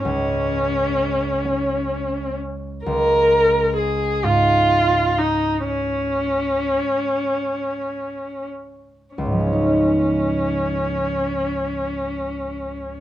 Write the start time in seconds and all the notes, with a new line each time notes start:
Already playing: C#4
0.04 C#2 C#4
1.45 C#4
2.85 C#2 A#4
3.76 G#4
4.24 G#2 F4
5.18 D#4
5.66 C#4
9.15 C#2 C#4
9.25 G#2
9.32 F3
9.39 G#3
9.46 C#4
9.53 D#4